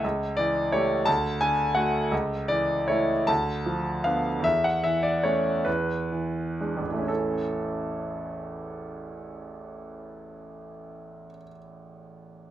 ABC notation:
X:1
M:6/8
L:1/16
Q:3/8=46
K:A
V:1 name="Grand piano"
z2 d2 c2 a2 g2 f2 | z2 d2 c2 a4 =f2 | e f e d c2 B6 | [A,,,E,,E,A,CEA]12- |
[A,,,E,,E,A,CEA]12 |]
V:2 name="Grand piano" clef=bass
C,,2 E,2 [A,=G]2 D,,2 D,2 [A,F]2 | C,,2 E,2 [A,E]2 D,,2 =F,2 [B,D]2 | E,,2 E,2 [A,C]2 E,,2 E,2 [G,D]2 | z12 |
z12 |]